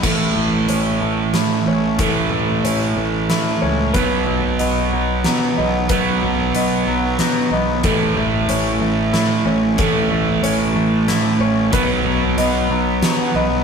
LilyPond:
<<
  \new Staff \with { instrumentName = "Felt piano" } { \time 3/4 \key a \lydian \tempo 4 = 92 a'4 cis''4 r8 cis''8 | a'4 cis''4 r8 cis''8 | b'4 dis''4 r8 dis''8 | b'4 dis''4 r8 dis''8 |
a'4 cis''4 r8 cis''8 | a'4 cis''4 r8 cis''8 | b'4 dis''4 r8 dis''8 | }
  \new Staff \with { instrumentName = "Clean electric guitar" } { \time 3/4 \key a \lydian a,8 a8 cis'8 a8 e'8 cis'8 | a,8 a8 cis'8 a8 e'8 cis'8 | b,8 fis8 b8 fis8 dis'8 b8 | b,8 fis8 b8 fis8 dis'8 b8 |
a,8 a8 cis'8 a8 e'8 cis'8 | a,8 a8 cis'8 a8 e'8 cis'8 | b,8 fis8 b8 fis8 dis'8 b8 | }
  \new Staff \with { instrumentName = "Distorted electric guitar" } { \clef bass \time 3/4 \key a \lydian <a, e a>2. | <a, e a>2. | <b, fis b>2. | <b, fis b>2. |
<a, e a>2. | <a, e a>2. | <b, fis b>2. | }
  \new Staff \with { instrumentName = "Picked electric bass" } { \clef bass \time 3/4 \key a \lydian a,,8 a,,8 a,,8 a,,8 a,8 a,,8 | a,,8 a,,8 a,,8 a,,8 a,8 cis,8 | b,,8 b,,8 b,,8 b,,8 b,8 b,,8 | b,,8 b,,8 b,,8 b,,8 b,8 b,,8 |
a,,8 a,,8 a,,8 a,,8 a,8 a,,8 | a,,8 a,,8 a,,8 a,,8 a,8 a,,8 | b,,8 b,,8 b,,8 b,,8 b,8 b,,8 | }
  \new DrumStaff \with { instrumentName = "Drums" } \drummode { \time 3/4 <cymc bd>4 hh4 <hh sn>4 | <hh bd>4 hh4 <hh sn>4 | <hh bd>4 hh4 <hh sn>4 | <hh bd>4 hh4 <hh sn>4 |
<hh bd>4 hh4 <hh sn>4 | <hh bd>4 hh4 <hh sn>4 | <hh bd>4 hh4 <hh sn>4 | }
>>